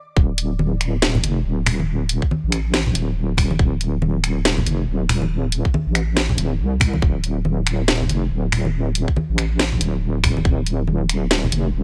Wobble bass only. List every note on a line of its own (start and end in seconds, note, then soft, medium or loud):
0.17 1.23 D1 loud
1.24 1.44 F1 medium
1.45 2.21 D1 medium
2.44 2.94 A1 medium
2.95 3.58 D1 medium
3.59 4.65 D1 loud
4.67 4.87 F1 medium
4.88 5.64 D1 medium
5.87 6.37 A1 medium
6.38 6.61 D1 medium
6.59 7.01 C2 loud
7.02 8.08 D1 loud
8.09 8.30 F1 medium
8.31 9.06 D1 medium
9.29 9.80 A1 medium
9.81 10.44 D1 medium
10.45 11.51 D1 loud
11.52 11.72 F1 medium
11.74 11.83 D1 medium